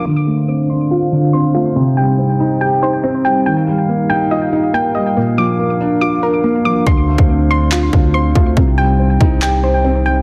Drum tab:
CP |----------------|----------------|----------------|----------------|
BD |----------------|----------------|----------------|----------------|

CP |--------x-------|--------x-------|
BD |o--o------o---o-|o-----o---------|